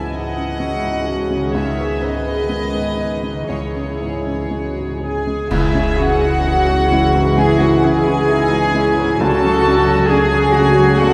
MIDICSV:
0, 0, Header, 1, 13, 480
1, 0, Start_track
1, 0, Key_signature, 4, "minor"
1, 0, Tempo, 936037
1, 786, Time_signature, 4, 2, 24, 8
1, 1274, Tempo, 1006711
1, 2714, Tempo, 928793
1, 4154, Tempo, 898204
1, 5673, End_track
2, 0, Start_track
2, 0, Title_t, "Flute"
2, 0, Program_c, 0, 73
2, 2480, Note_on_c, 0, 80, 81
2, 2721, Note_on_c, 0, 76, 98
2, 2728, Note_off_c, 0, 80, 0
2, 2955, Note_on_c, 0, 78, 123
2, 2963, Note_off_c, 0, 76, 0
2, 3680, Note_on_c, 0, 80, 112
2, 3688, Note_off_c, 0, 78, 0
2, 3792, Note_on_c, 0, 78, 105
2, 3800, Note_off_c, 0, 80, 0
2, 3920, Note_on_c, 0, 80, 113
2, 3928, Note_off_c, 0, 78, 0
2, 4489, Note_off_c, 0, 80, 0
2, 4631, Note_on_c, 0, 81, 112
2, 5115, Note_on_c, 0, 80, 127
2, 5123, Note_off_c, 0, 81, 0
2, 5593, Note_on_c, 0, 78, 114
2, 5601, Note_off_c, 0, 80, 0
2, 5673, Note_off_c, 0, 78, 0
2, 5673, End_track
3, 0, Start_track
3, 0, Title_t, "Violin section"
3, 0, Program_c, 1, 48
3, 0, Note_on_c, 1, 80, 88
3, 74, Note_off_c, 1, 80, 0
3, 76, Note_on_c, 1, 78, 110
3, 783, Note_on_c, 1, 76, 100
3, 788, Note_off_c, 1, 78, 0
3, 1022, Note_off_c, 1, 76, 0
3, 1026, Note_on_c, 1, 75, 121
3, 1753, Note_on_c, 1, 73, 80
3, 1754, Note_off_c, 1, 75, 0
3, 2478, Note_off_c, 1, 73, 0
3, 2484, Note_on_c, 1, 80, 90
3, 2701, Note_off_c, 1, 80, 0
3, 2724, Note_on_c, 1, 76, 112
3, 2964, Note_off_c, 1, 76, 0
3, 2967, Note_on_c, 1, 78, 125
3, 3683, Note_off_c, 1, 78, 0
3, 3684, Note_on_c, 1, 80, 110
3, 3801, Note_off_c, 1, 80, 0
3, 3805, Note_on_c, 1, 78, 114
3, 3921, Note_off_c, 1, 78, 0
3, 3924, Note_on_c, 1, 80, 120
3, 4637, Note_on_c, 1, 81, 124
3, 4641, Note_off_c, 1, 80, 0
3, 5113, Note_on_c, 1, 80, 127
3, 5114, Note_off_c, 1, 81, 0
3, 5582, Note_off_c, 1, 80, 0
3, 5595, Note_on_c, 1, 78, 127
3, 5673, Note_off_c, 1, 78, 0
3, 5673, End_track
4, 0, Start_track
4, 0, Title_t, "Violin section"
4, 0, Program_c, 2, 48
4, 0, Note_on_c, 2, 76, 80
4, 64, Note_on_c, 2, 75, 86
4, 70, Note_off_c, 2, 76, 0
4, 767, Note_off_c, 2, 75, 0
4, 782, Note_on_c, 2, 73, 78
4, 1022, Note_off_c, 2, 73, 0
4, 1026, Note_on_c, 2, 71, 93
4, 1754, Note_off_c, 2, 71, 0
4, 1755, Note_on_c, 2, 68, 67
4, 2465, Note_off_c, 2, 68, 0
4, 2490, Note_on_c, 2, 68, 83
4, 2704, Note_off_c, 2, 68, 0
4, 2723, Note_on_c, 2, 64, 97
4, 2960, Note_on_c, 2, 66, 112
4, 2964, Note_off_c, 2, 64, 0
4, 3679, Note_off_c, 2, 66, 0
4, 3679, Note_on_c, 2, 68, 127
4, 3799, Note_off_c, 2, 68, 0
4, 3805, Note_on_c, 2, 66, 104
4, 3921, Note_off_c, 2, 66, 0
4, 3928, Note_on_c, 2, 68, 121
4, 4641, Note_on_c, 2, 69, 127
4, 4643, Note_off_c, 2, 68, 0
4, 5111, Note_on_c, 2, 68, 118
4, 5116, Note_off_c, 2, 69, 0
4, 5581, Note_off_c, 2, 68, 0
4, 5582, Note_on_c, 2, 66, 127
4, 5673, Note_off_c, 2, 66, 0
4, 5673, End_track
5, 0, Start_track
5, 0, Title_t, "Cello section"
5, 0, Program_c, 3, 48
5, 0, Note_on_c, 3, 37, 76
5, 1735, Note_off_c, 3, 37, 0
5, 1757, Note_on_c, 3, 37, 62
5, 2600, Note_off_c, 3, 37, 0
5, 2722, Note_on_c, 3, 68, 97
5, 3184, Note_off_c, 3, 68, 0
5, 3206, Note_on_c, 3, 66, 97
5, 3442, Note_off_c, 3, 66, 0
5, 3443, Note_on_c, 3, 64, 92
5, 4156, Note_off_c, 3, 64, 0
5, 4162, Note_on_c, 3, 63, 88
5, 4401, Note_off_c, 3, 63, 0
5, 4403, Note_on_c, 3, 64, 90
5, 4640, Note_off_c, 3, 64, 0
5, 4644, Note_on_c, 3, 66, 124
5, 5108, Note_off_c, 3, 66, 0
5, 5121, Note_on_c, 3, 68, 127
5, 5356, Note_off_c, 3, 68, 0
5, 5360, Note_on_c, 3, 66, 113
5, 5597, Note_off_c, 3, 66, 0
5, 5602, Note_on_c, 3, 69, 105
5, 5673, Note_off_c, 3, 69, 0
5, 5673, End_track
6, 0, Start_track
6, 0, Title_t, "Clarinet"
6, 0, Program_c, 4, 71
6, 0, Note_on_c, 4, 64, 85
6, 302, Note_off_c, 4, 64, 0
6, 305, Note_on_c, 4, 66, 85
6, 780, Note_on_c, 4, 68, 96
6, 788, Note_off_c, 4, 66, 0
6, 1606, Note_off_c, 4, 68, 0
6, 1757, Note_on_c, 4, 64, 69
6, 2461, Note_off_c, 4, 64, 0
6, 2484, Note_on_c, 4, 68, 87
6, 2701, Note_off_c, 4, 68, 0
6, 2719, Note_on_c, 4, 64, 100
6, 2957, Note_on_c, 4, 66, 96
6, 2964, Note_off_c, 4, 64, 0
6, 3688, Note_on_c, 4, 68, 111
6, 3696, Note_off_c, 4, 66, 0
6, 3801, Note_on_c, 4, 66, 109
6, 3809, Note_off_c, 4, 68, 0
6, 3920, Note_on_c, 4, 68, 113
6, 3928, Note_off_c, 4, 66, 0
6, 4635, Note_off_c, 4, 68, 0
6, 4639, Note_on_c, 4, 69, 127
6, 5120, Note_on_c, 4, 68, 127
6, 5128, Note_off_c, 4, 69, 0
6, 5597, Note_on_c, 4, 66, 122
6, 5605, Note_off_c, 4, 68, 0
6, 5673, Note_off_c, 4, 66, 0
6, 5673, End_track
7, 0, Start_track
7, 0, Title_t, "Harp"
7, 0, Program_c, 5, 46
7, 0, Note_on_c, 5, 49, 61
7, 0, Note_on_c, 5, 56, 53
7, 0, Note_on_c, 5, 64, 50
7, 0, Note_on_c, 5, 73, 47
7, 686, Note_off_c, 5, 49, 0
7, 692, Note_on_c, 5, 49, 70
7, 709, Note_off_c, 5, 56, 0
7, 715, Note_on_c, 5, 56, 52
7, 738, Note_on_c, 5, 51, 55
7, 763, Note_on_c, 5, 71, 59
7, 780, Note_off_c, 5, 64, 0
7, 791, Note_off_c, 5, 73, 0
7, 1660, Note_off_c, 5, 49, 0
7, 1666, Note_on_c, 5, 49, 55
7, 1681, Note_off_c, 5, 56, 0
7, 1687, Note_on_c, 5, 56, 46
7, 1709, Note_on_c, 5, 52, 46
7, 1729, Note_on_c, 5, 73, 46
7, 1752, Note_off_c, 5, 51, 0
7, 1764, Note_off_c, 5, 71, 0
7, 2688, Note_off_c, 5, 49, 0
7, 2718, Note_on_c, 5, 49, 98
7, 2845, Note_on_c, 5, 61, 65
7, 2958, Note_off_c, 5, 56, 0
7, 2965, Note_on_c, 5, 56, 65
7, 3196, Note_off_c, 5, 73, 0
7, 3203, Note_on_c, 5, 73, 73
7, 3324, Note_on_c, 5, 68, 72
7, 3446, Note_on_c, 5, 80, 78
7, 3565, Note_on_c, 5, 85, 78
7, 3640, Note_off_c, 5, 52, 0
7, 3803, Note_off_c, 5, 85, 0
7, 3809, Note_on_c, 5, 85, 77
7, 4035, Note_off_c, 5, 85, 0
7, 4042, Note_on_c, 5, 85, 74
7, 4275, Note_off_c, 5, 68, 0
7, 4282, Note_on_c, 5, 68, 74
7, 4400, Note_off_c, 5, 73, 0
7, 4406, Note_on_c, 5, 73, 91
7, 4526, Note_on_c, 5, 64, 83
7, 4638, Note_off_c, 5, 49, 0
7, 4645, Note_on_c, 5, 49, 103
7, 4659, Note_off_c, 5, 56, 0
7, 4659, Note_off_c, 5, 68, 0
7, 4659, Note_off_c, 5, 80, 0
7, 4660, Note_off_c, 5, 64, 0
7, 4756, Note_off_c, 5, 61, 0
7, 4763, Note_on_c, 5, 61, 78
7, 4884, Note_on_c, 5, 54, 78
7, 5006, Note_on_c, 5, 66, 82
7, 5121, Note_off_c, 5, 73, 0
7, 5128, Note_on_c, 5, 73, 77
7, 5233, Note_off_c, 5, 66, 0
7, 5239, Note_on_c, 5, 66, 90
7, 5361, Note_on_c, 5, 78, 90
7, 5475, Note_off_c, 5, 85, 0
7, 5481, Note_on_c, 5, 85, 87
7, 5590, Note_off_c, 5, 78, 0
7, 5597, Note_on_c, 5, 78, 98
7, 5673, Note_off_c, 5, 49, 0
7, 5673, Note_off_c, 5, 54, 0
7, 5673, Note_off_c, 5, 61, 0
7, 5673, Note_off_c, 5, 66, 0
7, 5673, Note_off_c, 5, 73, 0
7, 5673, Note_off_c, 5, 78, 0
7, 5673, Note_off_c, 5, 85, 0
7, 5673, End_track
8, 0, Start_track
8, 0, Title_t, "Viola section"
8, 0, Program_c, 6, 48
8, 0, Note_on_c, 6, 64, 71
8, 292, Note_off_c, 6, 64, 0
8, 299, Note_on_c, 6, 64, 86
8, 301, Note_on_c, 6, 61, 77
8, 528, Note_on_c, 6, 66, 81
8, 536, Note_off_c, 6, 64, 0
8, 777, Note_off_c, 6, 66, 0
8, 781, Note_on_c, 6, 68, 72
8, 1268, Note_on_c, 6, 59, 73
8, 1272, Note_off_c, 6, 61, 0
8, 1503, Note_off_c, 6, 59, 0
8, 1508, Note_on_c, 6, 63, 63
8, 1746, Note_off_c, 6, 68, 0
8, 1748, Note_off_c, 6, 63, 0
8, 1751, Note_on_c, 6, 64, 56
8, 1751, Note_on_c, 6, 68, 57
8, 2180, Note_off_c, 6, 68, 0
8, 2188, Note_off_c, 6, 64, 0
8, 2238, Note_on_c, 6, 66, 72
8, 2462, Note_off_c, 6, 66, 0
8, 2478, Note_on_c, 6, 68, 60
8, 2714, Note_off_c, 6, 68, 0
8, 2719, Note_on_c, 6, 52, 73
8, 2719, Note_on_c, 6, 64, 72
8, 2831, Note_off_c, 6, 52, 0
8, 2831, Note_off_c, 6, 64, 0
8, 2836, Note_on_c, 6, 61, 66
8, 2837, Note_on_c, 6, 56, 62
8, 2957, Note_on_c, 6, 52, 73
8, 2957, Note_on_c, 6, 64, 73
8, 2959, Note_off_c, 6, 56, 0
8, 2959, Note_off_c, 6, 61, 0
8, 3075, Note_on_c, 6, 56, 75
8, 3075, Note_on_c, 6, 61, 67
8, 3079, Note_off_c, 6, 52, 0
8, 3079, Note_off_c, 6, 64, 0
8, 3194, Note_on_c, 6, 52, 76
8, 3197, Note_on_c, 6, 64, 79
8, 3198, Note_off_c, 6, 56, 0
8, 3198, Note_off_c, 6, 61, 0
8, 3309, Note_off_c, 6, 52, 0
8, 3310, Note_off_c, 6, 64, 0
8, 3323, Note_on_c, 6, 56, 68
8, 3323, Note_on_c, 6, 61, 69
8, 3441, Note_off_c, 6, 56, 0
8, 3441, Note_off_c, 6, 61, 0
8, 3441, Note_on_c, 6, 52, 75
8, 3441, Note_on_c, 6, 64, 77
8, 3558, Note_on_c, 6, 61, 70
8, 3559, Note_on_c, 6, 56, 77
8, 3560, Note_off_c, 6, 52, 0
8, 3560, Note_off_c, 6, 64, 0
8, 3676, Note_on_c, 6, 52, 72
8, 3678, Note_off_c, 6, 61, 0
8, 3678, Note_on_c, 6, 64, 78
8, 3679, Note_off_c, 6, 56, 0
8, 3788, Note_off_c, 6, 52, 0
8, 3789, Note_off_c, 6, 64, 0
8, 3795, Note_on_c, 6, 56, 72
8, 3797, Note_on_c, 6, 61, 75
8, 3916, Note_off_c, 6, 56, 0
8, 3917, Note_off_c, 6, 61, 0
8, 3920, Note_on_c, 6, 52, 83
8, 3923, Note_on_c, 6, 64, 75
8, 4035, Note_on_c, 6, 61, 85
8, 4036, Note_on_c, 6, 56, 74
8, 4038, Note_off_c, 6, 52, 0
8, 4039, Note_off_c, 6, 64, 0
8, 4146, Note_on_c, 6, 52, 81
8, 4150, Note_on_c, 6, 64, 94
8, 4154, Note_off_c, 6, 56, 0
8, 4154, Note_off_c, 6, 61, 0
8, 4263, Note_off_c, 6, 52, 0
8, 4265, Note_off_c, 6, 64, 0
8, 4273, Note_on_c, 6, 56, 72
8, 4274, Note_on_c, 6, 61, 79
8, 4386, Note_on_c, 6, 52, 73
8, 4387, Note_on_c, 6, 64, 82
8, 4395, Note_off_c, 6, 56, 0
8, 4396, Note_off_c, 6, 61, 0
8, 4504, Note_on_c, 6, 56, 68
8, 4505, Note_on_c, 6, 61, 83
8, 4512, Note_off_c, 6, 52, 0
8, 4512, Note_off_c, 6, 64, 0
8, 4624, Note_on_c, 6, 57, 91
8, 4624, Note_on_c, 6, 62, 91
8, 4631, Note_off_c, 6, 56, 0
8, 4631, Note_off_c, 6, 61, 0
8, 4742, Note_off_c, 6, 57, 0
8, 4742, Note_off_c, 6, 62, 0
8, 4751, Note_on_c, 6, 54, 76
8, 4752, Note_on_c, 6, 61, 80
8, 4866, Note_on_c, 6, 62, 83
8, 4869, Note_on_c, 6, 57, 80
8, 4874, Note_off_c, 6, 54, 0
8, 4874, Note_off_c, 6, 61, 0
8, 4990, Note_off_c, 6, 62, 0
8, 4992, Note_off_c, 6, 57, 0
8, 4994, Note_on_c, 6, 54, 91
8, 4994, Note_on_c, 6, 61, 93
8, 5113, Note_off_c, 6, 54, 0
8, 5113, Note_off_c, 6, 61, 0
8, 5114, Note_on_c, 6, 62, 91
8, 5116, Note_on_c, 6, 57, 82
8, 5225, Note_off_c, 6, 62, 0
8, 5226, Note_off_c, 6, 57, 0
8, 5240, Note_on_c, 6, 54, 80
8, 5243, Note_on_c, 6, 61, 92
8, 5348, Note_on_c, 6, 62, 93
8, 5353, Note_on_c, 6, 57, 87
8, 5356, Note_off_c, 6, 54, 0
8, 5357, Note_off_c, 6, 61, 0
8, 5466, Note_on_c, 6, 54, 96
8, 5468, Note_on_c, 6, 61, 85
8, 5470, Note_off_c, 6, 62, 0
8, 5472, Note_off_c, 6, 57, 0
8, 5580, Note_on_c, 6, 57, 97
8, 5583, Note_on_c, 6, 62, 85
8, 5590, Note_off_c, 6, 54, 0
8, 5591, Note_off_c, 6, 61, 0
8, 5673, Note_off_c, 6, 57, 0
8, 5673, Note_off_c, 6, 62, 0
8, 5673, End_track
9, 0, Start_track
9, 0, Title_t, "Felt piano"
9, 0, Program_c, 7, 0
9, 0, Control_c, 7, 64, 127
9, 0, Note_on_c, 7, 44, 59
9, 0, Note_on_c, 7, 56, 54
9, 0, Note_on_c, 7, 61, 59
9, 67, Note_off_c, 7, 44, 0
9, 67, Note_on_c, 7, 44, 47
9, 142, Note_off_c, 7, 61, 0
9, 185, Note_on_c, 7, 61, 63
9, 257, Note_off_c, 7, 44, 0
9, 306, Note_off_c, 7, 56, 0
9, 306, Note_on_c, 7, 56, 60
9, 376, Note_off_c, 7, 61, 0
9, 426, Note_on_c, 7, 44, 54
9, 497, Note_off_c, 7, 56, 0
9, 542, Note_on_c, 7, 61, 59
9, 617, Note_off_c, 7, 44, 0
9, 668, Note_on_c, 7, 56, 60
9, 736, Note_off_c, 7, 61, 0
9, 787, Note_off_c, 7, 56, 0
9, 791, Note_on_c, 7, 37, 74
9, 794, Control_c, 7, 64, 0
9, 886, Control_c, 7, 64, 127
9, 909, Note_on_c, 7, 59, 58
9, 1027, Note_on_c, 7, 44, 53
9, 1103, Note_off_c, 7, 59, 0
9, 1156, Note_on_c, 7, 59, 51
9, 1225, Note_off_c, 7, 44, 0
9, 1278, Note_on_c, 7, 56, 59
9, 1347, Note_off_c, 7, 59, 0
9, 1393, Note_on_c, 7, 44, 53
9, 1465, Note_off_c, 7, 56, 0
9, 1504, Note_on_c, 7, 59, 52
9, 1584, Note_off_c, 7, 44, 0
9, 1631, Note_on_c, 7, 56, 50
9, 1702, Note_off_c, 7, 59, 0
9, 1738, Note_off_c, 7, 37, 0
9, 1754, Note_off_c, 7, 56, 0
9, 1754, Note_on_c, 7, 37, 64
9, 1764, Control_c, 7, 64, 0
9, 1857, Control_c, 7, 64, 127
9, 1874, Note_on_c, 7, 61, 52
9, 1998, Note_on_c, 7, 44, 46
9, 2069, Note_off_c, 7, 61, 0
9, 2118, Note_on_c, 7, 61, 50
9, 2190, Note_off_c, 7, 44, 0
9, 2239, Note_on_c, 7, 56, 47
9, 2310, Note_off_c, 7, 61, 0
9, 2362, Note_on_c, 7, 44, 38
9, 2431, Note_off_c, 7, 56, 0
9, 2484, Note_on_c, 7, 61, 46
9, 2553, Note_off_c, 7, 44, 0
9, 2601, Note_on_c, 7, 56, 49
9, 2671, Note_off_c, 7, 61, 0
9, 2695, Note_off_c, 7, 37, 0
9, 2716, Note_off_c, 7, 56, 0
9, 2718, Note_on_c, 7, 37, 91
9, 2725, Control_c, 7, 64, 0
9, 2814, Control_c, 7, 64, 127
9, 2840, Note_on_c, 7, 56, 66
9, 2965, Note_on_c, 7, 61, 68
9, 3033, Note_off_c, 7, 56, 0
9, 3093, Note_on_c, 7, 64, 60
9, 3155, Note_off_c, 7, 61, 0
9, 3213, Note_on_c, 7, 68, 77
9, 3279, Note_off_c, 7, 64, 0
9, 3338, Note_on_c, 7, 61, 72
9, 3398, Note_off_c, 7, 68, 0
9, 3444, Note_on_c, 7, 56, 68
9, 3520, Note_off_c, 7, 61, 0
9, 3568, Note_on_c, 7, 44, 65
9, 3633, Note_off_c, 7, 56, 0
9, 3660, Note_off_c, 7, 37, 0
9, 3683, Note_on_c, 7, 56, 74
9, 3755, Note_off_c, 7, 44, 0
9, 3802, Note_on_c, 7, 44, 70
9, 3872, Note_off_c, 7, 56, 0
9, 3917, Note_on_c, 7, 61, 76
9, 3991, Note_off_c, 7, 44, 0
9, 4041, Note_on_c, 7, 64, 74
9, 4107, Note_off_c, 7, 61, 0
9, 4158, Note_on_c, 7, 68, 84
9, 4230, Note_off_c, 7, 64, 0
9, 4277, Note_on_c, 7, 61, 73
9, 4350, Note_off_c, 7, 68, 0
9, 4397, Note_on_c, 7, 56, 74
9, 4469, Note_off_c, 7, 61, 0
9, 4519, Note_on_c, 7, 44, 79
9, 4589, Note_off_c, 7, 56, 0
9, 4638, Note_off_c, 7, 44, 0
9, 4643, Note_on_c, 7, 37, 95
9, 4647, Control_c, 7, 64, 0
9, 4745, Control_c, 7, 64, 127
9, 4770, Note_on_c, 7, 54, 69
9, 4889, Note_on_c, 7, 61, 75
9, 4954, Note_off_c, 7, 54, 0
9, 5009, Note_on_c, 7, 66, 79
9, 5073, Note_off_c, 7, 61, 0
9, 5124, Note_on_c, 7, 61, 96
9, 5192, Note_off_c, 7, 66, 0
9, 5245, Note_on_c, 7, 54, 77
9, 5309, Note_off_c, 7, 61, 0
9, 5371, Note_on_c, 7, 49, 81
9, 5430, Note_off_c, 7, 54, 0
9, 5486, Note_on_c, 7, 54, 77
9, 5554, Note_off_c, 7, 49, 0
9, 5574, Note_off_c, 7, 37, 0
9, 5612, Note_on_c, 7, 37, 88
9, 5672, Note_off_c, 7, 54, 0
9, 5673, Note_off_c, 7, 37, 0
9, 5673, End_track
10, 0, Start_track
10, 0, Title_t, "French horn section"
10, 0, Program_c, 8, 60
10, 0, Note_on_c, 8, 52, 70
10, 0, Note_on_c, 8, 56, 70
10, 763, Note_off_c, 8, 52, 0
10, 791, Note_on_c, 8, 51, 86
10, 1732, Note_off_c, 8, 56, 0
10, 1739, Note_off_c, 8, 51, 0
10, 1756, Note_on_c, 8, 52, 66
10, 1757, Note_on_c, 8, 68, 64
10, 2541, Note_off_c, 8, 68, 0
10, 2556, Note_off_c, 8, 52, 0
10, 2719, Note_on_c, 8, 68, 104
10, 2724, Note_on_c, 8, 52, 105
10, 4618, Note_off_c, 8, 68, 0
10, 4621, Note_off_c, 8, 52, 0
10, 4639, Note_on_c, 8, 66, 108
10, 4641, Note_on_c, 8, 49, 126
10, 5673, Note_off_c, 8, 49, 0
10, 5673, Note_off_c, 8, 66, 0
10, 5673, End_track
11, 0, Start_track
11, 0, Title_t, "Timpani"
11, 0, Program_c, 10, 47
11, 4639, Note_on_c, 10, 49, 125
11, 5332, Note_off_c, 10, 49, 0
11, 5673, End_track
12, 0, Start_track
12, 0, Title_t, "Double bass section"
12, 0, Program_c, 11, 48
12, 0, Note_on_c, 11, 37, 69
12, 1735, Note_off_c, 11, 37, 0
12, 1760, Note_on_c, 11, 37, 66
12, 2601, Note_off_c, 11, 37, 0
12, 2718, Note_on_c, 11, 37, 96
12, 4618, Note_off_c, 11, 37, 0
12, 4639, Note_on_c, 11, 37, 100
12, 5673, Note_off_c, 11, 37, 0
12, 5673, End_track
13, 0, Start_track
13, 0, Title_t, "Drums"
13, 2717, Note_on_c, 9, 35, 84
13, 2717, Note_on_c, 9, 49, 83
13, 2768, Note_off_c, 9, 35, 0
13, 2768, Note_off_c, 9, 49, 0
13, 5673, End_track
0, 0, End_of_file